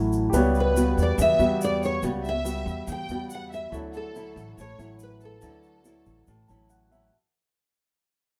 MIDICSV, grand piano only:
0, 0, Header, 1, 2, 480
1, 0, Start_track
1, 0, Key_signature, 2, "major"
1, 0, Tempo, 424628
1, 378, Time_signature, 4, 2, 24, 8
1, 9484, End_track
2, 0, Start_track
2, 0, Title_t, "Grand piano"
2, 0, Program_c, 0, 0
2, 0, Control_c, 0, 64, 127
2, 0, Note_on_c, 0, 64, 46
2, 0, Note_on_c, 0, 66, 45
2, 0, Note_on_c, 0, 69, 46
2, 0, Note_on_c, 0, 73, 54
2, 319, Note_off_c, 0, 64, 0
2, 328, Note_off_c, 0, 66, 0
2, 335, Note_on_c, 0, 67, 59
2, 343, Note_off_c, 0, 69, 0
2, 354, Note_off_c, 0, 73, 0
2, 380, Note_on_c, 0, 71, 58
2, 390, Control_c, 0, 64, 0
2, 407, Note_on_c, 0, 73, 66
2, 599, Control_c, 0, 64, 127
2, 4148, Note_off_c, 0, 67, 0
2, 4171, Note_off_c, 0, 71, 0
2, 4184, Note_off_c, 0, 73, 0
2, 4184, Note_on_c, 0, 64, 55
2, 4204, Note_on_c, 0, 66, 48
2, 4228, Control_c, 0, 64, 0
2, 4229, Note_on_c, 0, 69, 49
2, 4253, Note_on_c, 0, 73, 58
2, 4410, Control_c, 0, 64, 127
2, 7328, Note_on_c, 0, 81, 48
2, 7555, Note_off_c, 0, 81, 0
2, 7572, Note_on_c, 0, 78, 52
2, 7797, Note_off_c, 0, 78, 0
2, 7817, Note_on_c, 0, 76, 54
2, 7995, Note_off_c, 0, 64, 0
2, 8006, Note_off_c, 0, 66, 0
2, 8018, Note_off_c, 0, 69, 0
2, 8030, Note_off_c, 0, 73, 0
2, 8040, Note_off_c, 0, 76, 0
2, 8072, Control_c, 0, 64, 0
2, 9484, End_track
0, 0, End_of_file